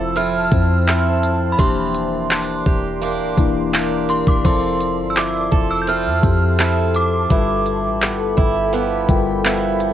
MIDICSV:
0, 0, Header, 1, 7, 480
1, 0, Start_track
1, 0, Key_signature, -1, "major"
1, 0, Tempo, 714286
1, 1067, Time_signature, 4, 2, 24, 8
1, 6674, End_track
2, 0, Start_track
2, 0, Title_t, "Synth bell"
2, 0, Program_c, 0, 98
2, 0, Note_on_c, 0, 88, 98
2, 112, Note_on_c, 0, 89, 112
2, 126, Note_off_c, 0, 88, 0
2, 1025, Note_on_c, 0, 83, 59
2, 1050, Note_off_c, 0, 89, 0
2, 1070, Note_off_c, 0, 83, 0
2, 1074, Note_on_c, 0, 84, 82
2, 1764, Note_off_c, 0, 84, 0
2, 2753, Note_on_c, 0, 84, 83
2, 2874, Note_off_c, 0, 84, 0
2, 2877, Note_on_c, 0, 86, 85
2, 2996, Note_off_c, 0, 86, 0
2, 2996, Note_on_c, 0, 84, 90
2, 3428, Note_on_c, 0, 88, 67
2, 3437, Note_off_c, 0, 84, 0
2, 3471, Note_off_c, 0, 88, 0
2, 3476, Note_on_c, 0, 86, 99
2, 3834, Note_on_c, 0, 88, 94
2, 3842, Note_off_c, 0, 86, 0
2, 3866, Note_off_c, 0, 88, 0
2, 3909, Note_on_c, 0, 91, 73
2, 3952, Note_off_c, 0, 91, 0
2, 3956, Note_on_c, 0, 89, 108
2, 4677, Note_on_c, 0, 86, 89
2, 4693, Note_off_c, 0, 89, 0
2, 6565, Note_off_c, 0, 86, 0
2, 6674, End_track
3, 0, Start_track
3, 0, Title_t, "Ambient pad"
3, 0, Program_c, 1, 92
3, 0, Note_on_c, 1, 53, 77
3, 0, Note_on_c, 1, 72, 71
3, 0, Note_on_c, 1, 81, 83
3, 1039, Note_off_c, 1, 53, 0
3, 1047, Note_off_c, 1, 72, 0
3, 1048, Note_off_c, 1, 81, 0
3, 1066, Note_on_c, 1, 70, 75
3, 1067, Note_on_c, 1, 74, 72
3, 1067, Note_on_c, 1, 84, 83
3, 2968, Note_off_c, 1, 70, 0
3, 2968, Note_off_c, 1, 74, 0
3, 2988, Note_on_c, 1, 69, 75
3, 2990, Note_on_c, 1, 81, 70
3, 4880, Note_off_c, 1, 84, 0
3, 4889, Note_off_c, 1, 81, 0
3, 4905, Note_on_c, 1, 83, 83
3, 4906, Note_on_c, 1, 79, 73
3, 6674, Note_off_c, 1, 69, 0
3, 6674, Note_off_c, 1, 79, 0
3, 6674, Note_off_c, 1, 83, 0
3, 6674, End_track
4, 0, Start_track
4, 0, Title_t, "Steel-string acoustic guitar"
4, 0, Program_c, 2, 25
4, 0, Note_on_c, 2, 53, 78
4, 0, Note_on_c, 2, 64, 62
4, 0, Note_on_c, 2, 69, 63
4, 105, Note_on_c, 2, 60, 59
4, 106, Note_off_c, 2, 69, 0
4, 107, Note_off_c, 2, 64, 0
4, 109, Note_on_c, 2, 64, 63
4, 114, Note_on_c, 2, 69, 71
4, 583, Note_off_c, 2, 60, 0
4, 585, Note_off_c, 2, 69, 0
4, 585, Note_on_c, 2, 60, 63
4, 587, Note_off_c, 2, 64, 0
4, 589, Note_on_c, 2, 64, 61
4, 593, Note_on_c, 2, 69, 70
4, 1064, Note_off_c, 2, 53, 0
4, 1067, Note_on_c, 2, 52, 77
4, 1069, Note_off_c, 2, 69, 0
4, 1071, Note_on_c, 2, 67, 65
4, 1545, Note_off_c, 2, 64, 0
4, 1548, Note_on_c, 2, 62, 62
4, 1568, Note_off_c, 2, 60, 0
4, 1780, Note_off_c, 2, 67, 0
4, 1788, Note_on_c, 2, 67, 59
4, 2023, Note_off_c, 2, 62, 0
4, 2027, Note_on_c, 2, 58, 60
4, 2028, Note_off_c, 2, 67, 0
4, 2031, Note_on_c, 2, 62, 62
4, 2035, Note_on_c, 2, 67, 69
4, 2500, Note_off_c, 2, 58, 0
4, 2503, Note_off_c, 2, 62, 0
4, 2508, Note_off_c, 2, 67, 0
4, 2508, Note_on_c, 2, 58, 59
4, 2511, Note_on_c, 2, 62, 59
4, 2516, Note_on_c, 2, 67, 69
4, 2984, Note_off_c, 2, 52, 0
4, 2987, Note_on_c, 2, 53, 75
4, 2988, Note_off_c, 2, 67, 0
4, 2991, Note_on_c, 2, 69, 63
4, 3036, Note_off_c, 2, 58, 0
4, 3037, Note_off_c, 2, 62, 0
4, 3467, Note_on_c, 2, 64, 57
4, 3703, Note_off_c, 2, 69, 0
4, 3706, Note_on_c, 2, 69, 63
4, 3946, Note_on_c, 2, 60, 64
4, 3948, Note_off_c, 2, 64, 0
4, 3951, Note_on_c, 2, 64, 57
4, 3952, Note_off_c, 2, 69, 0
4, 3955, Note_on_c, 2, 69, 69
4, 4418, Note_off_c, 2, 60, 0
4, 4426, Note_on_c, 2, 60, 60
4, 4428, Note_off_c, 2, 64, 0
4, 4431, Note_on_c, 2, 64, 62
4, 4432, Note_off_c, 2, 69, 0
4, 4434, Note_on_c, 2, 69, 69
4, 4905, Note_on_c, 2, 43, 77
4, 4907, Note_off_c, 2, 64, 0
4, 4909, Note_on_c, 2, 64, 67
4, 4926, Note_off_c, 2, 53, 0
4, 4955, Note_off_c, 2, 60, 0
4, 5385, Note_on_c, 2, 59, 64
4, 5405, Note_off_c, 2, 69, 0
4, 5622, Note_off_c, 2, 64, 0
4, 5625, Note_on_c, 2, 64, 68
4, 5861, Note_off_c, 2, 59, 0
4, 5865, Note_on_c, 2, 53, 63
4, 5869, Note_on_c, 2, 59, 61
4, 5870, Note_off_c, 2, 64, 0
4, 5873, Note_on_c, 2, 64, 67
4, 6342, Note_off_c, 2, 59, 0
4, 6343, Note_off_c, 2, 53, 0
4, 6346, Note_on_c, 2, 53, 63
4, 6350, Note_on_c, 2, 59, 63
4, 6351, Note_off_c, 2, 64, 0
4, 6354, Note_on_c, 2, 64, 70
4, 6674, Note_off_c, 2, 43, 0
4, 6674, Note_off_c, 2, 53, 0
4, 6674, Note_off_c, 2, 59, 0
4, 6674, Note_off_c, 2, 64, 0
4, 6674, End_track
5, 0, Start_track
5, 0, Title_t, "Tine electric piano"
5, 0, Program_c, 3, 4
5, 0, Control_c, 3, 64, 127
5, 0, Note_on_c, 3, 53, 90
5, 0, Note_on_c, 3, 60, 80
5, 0, Note_on_c, 3, 64, 78
5, 0, Note_on_c, 3, 69, 99
5, 345, Note_off_c, 3, 53, 0
5, 345, Note_on_c, 3, 53, 73
5, 350, Note_off_c, 3, 60, 0
5, 350, Note_on_c, 3, 60, 66
5, 353, Note_off_c, 3, 64, 0
5, 353, Note_on_c, 3, 64, 68
5, 358, Note_on_c, 3, 72, 79
5, 830, Note_off_c, 3, 53, 0
5, 832, Note_off_c, 3, 60, 0
5, 834, Note_off_c, 3, 64, 0
5, 837, Note_off_c, 3, 72, 0
5, 1066, Note_on_c, 3, 52, 69
5, 1070, Note_on_c, 3, 58, 65
5, 1073, Note_on_c, 3, 62, 68
5, 1076, Control_c, 3, 64, 0
5, 1077, Note_on_c, 3, 67, 81
5, 1081, Note_off_c, 3, 69, 0
5, 1201, Control_c, 3, 64, 127
5, 1712, Note_off_c, 3, 52, 0
5, 1714, Note_off_c, 3, 58, 0
5, 1715, Note_off_c, 3, 62, 0
5, 1717, Note_off_c, 3, 67, 0
5, 2267, Note_on_c, 3, 52, 85
5, 2270, Note_on_c, 3, 58, 78
5, 2274, Note_on_c, 3, 62, 80
5, 2278, Note_on_c, 3, 64, 97
5, 2751, Note_off_c, 3, 52, 0
5, 2752, Note_off_c, 3, 58, 0
5, 2754, Note_off_c, 3, 62, 0
5, 2756, Note_off_c, 3, 64, 0
5, 2987, Note_on_c, 3, 53, 73
5, 2992, Note_on_c, 3, 60, 67
5, 2995, Control_c, 3, 64, 0
5, 2995, Note_on_c, 3, 64, 67
5, 2999, Note_on_c, 3, 69, 80
5, 3098, Control_c, 3, 64, 127
5, 3632, Note_off_c, 3, 53, 0
5, 3635, Note_off_c, 3, 60, 0
5, 3636, Note_off_c, 3, 64, 0
5, 3638, Note_off_c, 3, 69, 0
5, 4186, Note_on_c, 3, 53, 73
5, 4190, Note_on_c, 3, 60, 66
5, 4193, Note_on_c, 3, 64, 64
5, 4198, Note_on_c, 3, 67, 83
5, 4671, Note_off_c, 3, 53, 0
5, 4672, Note_off_c, 3, 60, 0
5, 4674, Note_off_c, 3, 64, 0
5, 4676, Note_off_c, 3, 67, 0
5, 4906, Note_on_c, 3, 55, 73
5, 4907, Note_on_c, 3, 65, 70
5, 4911, Note_on_c, 3, 69, 66
5, 4913, Note_on_c, 3, 71, 66
5, 4916, Note_on_c, 3, 76, 82
5, 4917, Control_c, 3, 64, 0
5, 5040, Control_c, 3, 64, 127
5, 5551, Note_off_c, 3, 55, 0
5, 5552, Note_off_c, 3, 65, 0
5, 5554, Note_off_c, 3, 69, 0
5, 5555, Note_off_c, 3, 71, 0
5, 5557, Note_off_c, 3, 76, 0
5, 6103, Note_on_c, 3, 55, 85
5, 6106, Note_on_c, 3, 65, 83
5, 6108, Note_on_c, 3, 69, 79
5, 6111, Note_on_c, 3, 70, 64
5, 6115, Note_on_c, 3, 79, 93
5, 6153, Note_off_c, 3, 70, 0
5, 6155, Note_on_c, 3, 71, 83
5, 6589, Note_off_c, 3, 55, 0
5, 6590, Note_off_c, 3, 65, 0
5, 6591, Note_off_c, 3, 69, 0
5, 6595, Note_off_c, 3, 79, 0
5, 6615, Note_off_c, 3, 71, 0
5, 6674, End_track
6, 0, Start_track
6, 0, Title_t, "808-style bass"
6, 0, Program_c, 4, 38
6, 0, Note_on_c, 4, 29, 103
6, 330, Note_off_c, 4, 29, 0
6, 348, Note_on_c, 4, 41, 104
6, 1041, Note_off_c, 4, 41, 0
6, 1069, Note_on_c, 4, 28, 114
6, 1761, Note_off_c, 4, 28, 0
6, 1791, Note_on_c, 4, 28, 107
6, 2149, Note_on_c, 4, 26, 96
6, 2159, Note_off_c, 4, 28, 0
6, 2262, Note_off_c, 4, 26, 0
6, 2269, Note_on_c, 4, 28, 101
6, 2845, Note_off_c, 4, 28, 0
6, 2871, Note_on_c, 4, 28, 96
6, 2984, Note_off_c, 4, 28, 0
6, 2991, Note_on_c, 4, 29, 107
6, 3350, Note_on_c, 4, 31, 95
6, 3360, Note_off_c, 4, 29, 0
6, 3691, Note_off_c, 4, 31, 0
6, 3711, Note_on_c, 4, 29, 101
6, 4069, Note_on_c, 4, 41, 98
6, 4080, Note_off_c, 4, 29, 0
6, 4182, Note_off_c, 4, 41, 0
6, 4189, Note_on_c, 4, 41, 106
6, 4881, Note_off_c, 4, 41, 0
6, 4909, Note_on_c, 4, 31, 108
6, 5268, Note_on_c, 4, 33, 99
6, 5278, Note_off_c, 4, 31, 0
6, 5448, Note_on_c, 4, 31, 96
6, 5459, Note_off_c, 4, 33, 0
6, 5619, Note_off_c, 4, 31, 0
6, 5630, Note_on_c, 4, 31, 98
6, 6090, Note_off_c, 4, 31, 0
6, 6108, Note_on_c, 4, 31, 102
6, 6674, Note_off_c, 4, 31, 0
6, 6674, End_track
7, 0, Start_track
7, 0, Title_t, "Drums"
7, 106, Note_on_c, 9, 42, 60
7, 173, Note_off_c, 9, 42, 0
7, 347, Note_on_c, 9, 36, 92
7, 349, Note_on_c, 9, 42, 71
7, 414, Note_off_c, 9, 36, 0
7, 416, Note_off_c, 9, 42, 0
7, 589, Note_on_c, 9, 42, 71
7, 593, Note_on_c, 9, 39, 101
7, 656, Note_off_c, 9, 42, 0
7, 660, Note_off_c, 9, 39, 0
7, 829, Note_on_c, 9, 42, 66
7, 896, Note_off_c, 9, 42, 0
7, 1068, Note_on_c, 9, 36, 117
7, 1068, Note_on_c, 9, 42, 64
7, 1135, Note_off_c, 9, 36, 0
7, 1135, Note_off_c, 9, 42, 0
7, 1308, Note_on_c, 9, 42, 68
7, 1376, Note_off_c, 9, 42, 0
7, 1547, Note_on_c, 9, 42, 61
7, 1552, Note_on_c, 9, 39, 102
7, 1615, Note_off_c, 9, 42, 0
7, 1619, Note_off_c, 9, 39, 0
7, 1790, Note_on_c, 9, 36, 82
7, 1857, Note_off_c, 9, 36, 0
7, 2028, Note_on_c, 9, 42, 55
7, 2095, Note_off_c, 9, 42, 0
7, 2268, Note_on_c, 9, 36, 97
7, 2270, Note_on_c, 9, 42, 73
7, 2335, Note_off_c, 9, 36, 0
7, 2338, Note_off_c, 9, 42, 0
7, 2510, Note_on_c, 9, 42, 66
7, 2514, Note_on_c, 9, 39, 97
7, 2577, Note_off_c, 9, 42, 0
7, 2581, Note_off_c, 9, 39, 0
7, 2749, Note_on_c, 9, 42, 67
7, 2816, Note_off_c, 9, 42, 0
7, 2870, Note_on_c, 9, 36, 96
7, 2937, Note_off_c, 9, 36, 0
7, 2989, Note_on_c, 9, 36, 113
7, 2990, Note_on_c, 9, 42, 64
7, 3057, Note_off_c, 9, 36, 0
7, 3057, Note_off_c, 9, 42, 0
7, 3229, Note_on_c, 9, 42, 66
7, 3296, Note_off_c, 9, 42, 0
7, 3467, Note_on_c, 9, 42, 65
7, 3472, Note_on_c, 9, 39, 105
7, 3534, Note_off_c, 9, 42, 0
7, 3539, Note_off_c, 9, 39, 0
7, 3710, Note_on_c, 9, 36, 86
7, 3778, Note_off_c, 9, 36, 0
7, 3947, Note_on_c, 9, 42, 57
7, 4014, Note_off_c, 9, 42, 0
7, 4188, Note_on_c, 9, 36, 88
7, 4189, Note_on_c, 9, 42, 70
7, 4255, Note_off_c, 9, 36, 0
7, 4257, Note_off_c, 9, 42, 0
7, 4428, Note_on_c, 9, 42, 67
7, 4432, Note_on_c, 9, 39, 100
7, 4495, Note_off_c, 9, 42, 0
7, 4499, Note_off_c, 9, 39, 0
7, 4667, Note_on_c, 9, 42, 65
7, 4735, Note_off_c, 9, 42, 0
7, 4907, Note_on_c, 9, 42, 63
7, 4908, Note_on_c, 9, 36, 115
7, 4975, Note_off_c, 9, 36, 0
7, 4975, Note_off_c, 9, 42, 0
7, 5148, Note_on_c, 9, 42, 64
7, 5215, Note_off_c, 9, 42, 0
7, 5386, Note_on_c, 9, 42, 67
7, 5390, Note_on_c, 9, 39, 107
7, 5453, Note_off_c, 9, 42, 0
7, 5458, Note_off_c, 9, 39, 0
7, 5629, Note_on_c, 9, 36, 88
7, 5696, Note_off_c, 9, 36, 0
7, 5866, Note_on_c, 9, 42, 59
7, 5933, Note_off_c, 9, 42, 0
7, 6107, Note_on_c, 9, 36, 90
7, 6108, Note_on_c, 9, 42, 74
7, 6174, Note_off_c, 9, 36, 0
7, 6176, Note_off_c, 9, 42, 0
7, 6347, Note_on_c, 9, 42, 70
7, 6351, Note_on_c, 9, 39, 97
7, 6414, Note_off_c, 9, 42, 0
7, 6418, Note_off_c, 9, 39, 0
7, 6587, Note_on_c, 9, 42, 68
7, 6654, Note_off_c, 9, 42, 0
7, 6674, End_track
0, 0, End_of_file